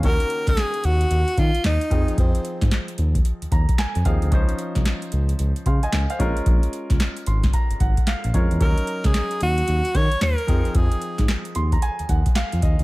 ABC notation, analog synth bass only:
X:1
M:4/4
L:1/16
Q:"Swing 16ths" 1/4=112
K:Ebdor
V:1 name="Analog synth bass" clef=bass
E,, z2 D,, z2 E,,2 E,, z E, z E,, z F,, z | F,, z2 A,, z2 E,,2 z E,, E,, z2 F,, E,, =D,, | D,, z2 C,, z2 D,,2 D,, z D, z D,, z B,,, z | B,,, z2 D,, z2 A,,,2 z A,,, A,,, z2 B,,, F,, _F,, |
E,, z2 D,, z2 E,,2 E,, z E, z E,, z F,, z | F,, z2 A,, z2 E,,2 z E,, E,, z2 F,, E,, =D,, |]